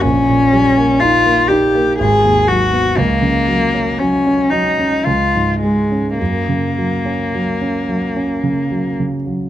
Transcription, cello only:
X:1
M:3/4
L:1/8
Q:1/4=57
K:F#
V:1 name="Cello"
C2 E =G ^G F | A,2 C D E G, | A,4- A, z |]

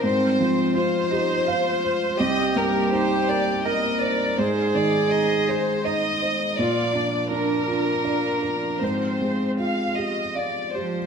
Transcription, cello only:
X:1
M:3/4
L:1/8
Q:1/4=82
K:Fdor
V:1 name="Cello"
C2 F E F2 | G4 B2 | A4 E z | F D4- D |
C4 z F, |]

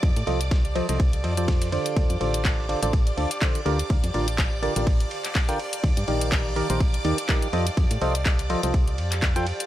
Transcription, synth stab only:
X:1
M:4/4
L:1/16
Q:"Swing 16ths" 1/4=124
K:Fmix
V:1 name="Synth stab"
z2 [F,FAce] z3 [F,FAce] [F,FAce] z2 [F,FAce] [F,FAcd]3 [D,FAcd]2- | [D,FAcd]2 [D,FAcd]4 [D,FAcd] [D,FAcd] z2 [D,FAcd] z [D,FAcd]2 [D,FGBd] z | z2 [D,FGBd] z3 [D,FGBd] [D,FGBd] z4 z [D,FGBg] z2 | z2 [E,EGBd]4 [E,EGBd] [E,EGBc] z2 [E,EGBd] z [F,EGBd]2 [F,FAce] z |
z2 [F,FAce] z3 [F,FAce] [F,FAce] z4 z [F,FAcg] z2 |]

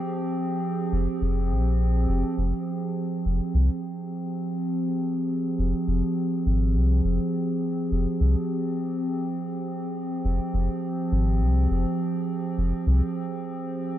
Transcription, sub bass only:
X:1
M:4/4
L:1/8
Q:"Swing 16ths" 1/4=103
K:Fm
V:1 name="Sub bass" clef=bass
z3 F,,, F,,, B,,,2 F,,, | F,,, z2 F,,, C,, z3 | z3 F,,, F,,, z A,,, C,, | F,,, z2 F,,, C,, z3 |
z3 F,,, F,,, z A,,, C,, | F,,, z2 F,,, C,, z3 |]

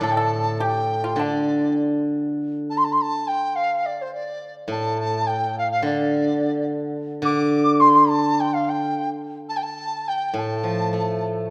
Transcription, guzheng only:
X:1
M:4/4
L:1/8
Q:1/4=105
K:none
V:1 name="Guzheng" clef=bass
[A,,D,A,D]4 D,4- | D,2 z6 | A,,4 D,4- | D, D,6 z |
z4 A,, F, A,2 |]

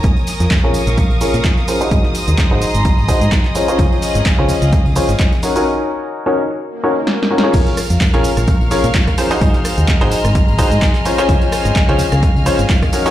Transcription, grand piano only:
X:1
M:4/4
L:1/16
Q:"Swing 16ths" 1/4=128
K:Bbm
V:1 name="Grand piano"
z4 z [DFABd] z4 [DFABd] z3 [DFABc] [EGAce]- | [EGAce]4- [EGAce] [EGAce] z4 [EGAce] z3 [DFAcd] [DFAcd]- | [DFAcd]4- [DFAcd] [DFAcd] z4 [DFAcd] z3 [DEGBd] [DEGBd]- | [DEGBd]4- [DEGBd] [DEGBd] z4 [DEGBd] z3 [DEGBd] [DFABd]- |
[DFABd]2 z3 [DFABd] z4 [DFABd] z3 [DFABc] [EGAce]- | [EGAce]4- [EGAce] [EGAce] z4 [EGAce] z3 [DFAcd] [DFAcd]- | [DFAcd]4- [DFAcd] [DFAcd] z4 [DFAcd] z3 [DEGBd] [DEGBd] |]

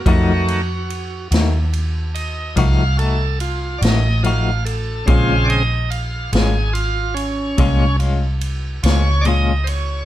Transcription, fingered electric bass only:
X:1
M:12/8
L:1/8
Q:3/8=48
K:Bbm
V:1 name="Fingered electric bass" clef=bass
F,,3 E,,3 C,,3 =A,,,3 | B,,,3 A,,,3 C,,3 D,,3 |]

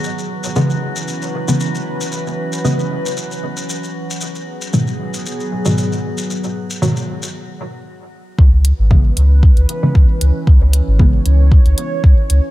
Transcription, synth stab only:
X:1
M:4/4
L:1/16
Q:"Swing 16ths" 1/4=115
K:C#m
V:1 name="Synth stab" clef=bass
z4 [C,E,G,B,] z6 [C,E,G,B,]4- [C,E,G,B,]- | [C,E,G,B,]4 [C,E,G,B,] z8 z3 | z4 [G,,B,,D,F,] z6 [G,,B,,D,F,]4- [G,,B,,D,F,]- | [G,,B,,D,F,]4 [G,,B,,D,F,] z8 z3 |
z4 [C,E,G,B,] z6 [C,E,G,B,]4- [C,E,G,B,]- | [C,E,G,B,]4 [C,E,G,B,] z8 z3 |]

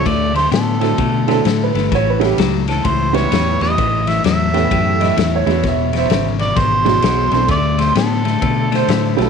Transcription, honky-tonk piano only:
X:1
M:4/4
L:1/8
Q:"Swing" 1/4=129
K:Amix
V:1 name="Honky-tonk piano"
z3 [F,=CDEA] z [F,CDEA] z2 | z [G,B,CEA] z3 [G,B,CEB]3 | z3 [B,CEGA]3 z [^G,B,DEF] | z4 z [F,^G,DEF]2 [A,=CDEA] |
z6 z [G,B,CEF] |]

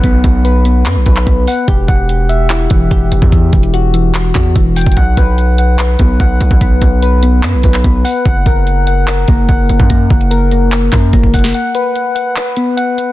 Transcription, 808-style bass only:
X:1
M:4/4
L:1/16
Q:1/4=146
K:F#phr
V:1 name="808-style bass" clef=bass
B,,,2 B,,,6 F,, B,,, B,,,2 B,,,2 z2 | E,,,2 E,,,8 E,,,2 E,,,2 E,,, E,,- | E,,2 E,,,8 E,,2 E,,,3 E,,, | B,,,2 B,,,8 B,,,2 B,,,2 B,,, B,,,- |
B,,,2 B,,,6 F,, B,,, B,,,2 B,,,2 z2 | F,,,2 F,,,8 F,,,2 F,,,2 F,,, F,,- | F,,2 F,,,8 F,,2 F,,,4 | z16 |]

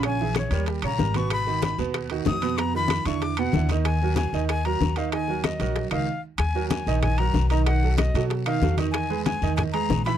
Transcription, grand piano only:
X:1
M:4/4
L:1/8
Q:1/4=189
K:Ebm
V:1 name="Grand piano"
[D,Dd] [_F,_FA]2 [=G,=GB]2 [D,Dd] [G,GB] [C,Cc]- | [C,Cc] [E,EG]2 [C,Cc]2 [E,EG]2 [C,Cc] | [=B,,=B,=B] [^D,^D^E]2 [=D,=D_F]2 [B,,B,B] [D,D=E] [_E,_Ee]- | [E,Ee] [G,GB]2 [E,Ee]2 [G,GB]2 [E,Ee] |
[E,Ee] [G,GB]2 [G,GB]2 [E,Ee] z2 | z [G,GB]2 [E,Ee]2 [G,GB]2 [E,Ee] | [^D,^D^d] [^F,^F=A]2 [F,FA]2 [D,Dd] [F,FA] [D,Dd]- | [^D,^D^d] [^G,^G=B]2 [D,Dd]2 [G,GB]2 [=E,=E=e] |]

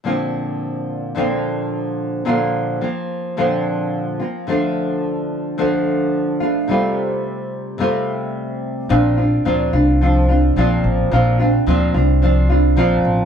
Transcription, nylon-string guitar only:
X:1
M:4/4
L:1/8
Q:"Swing 16ths" 1/4=108
K:Bb
V:1 name="Nylon-string guitar"
[B,,D,F,B,CF]4 [B,,D,F,B,CF]4 | [B,,D,F,B,CF]2 [F,B,CF]2 [B,,D,F,B,CF]3 [F,B,CF] | [D,F,A,DF]4 [D,F,A,DF]3 [A,DF] | [C,G,A,CF]4 [C,G,A,CF]4 |
[B,,F,CDF] [CDF] [B,,F,CDF] [CDF] [F,CDF] [CDF] [B,,F,CDF]2 | [B,,F,CDF] [CDF] [B,,F,CDF] [CDF] [F,CDF] [CDF] [B,,F,CDF]2 |]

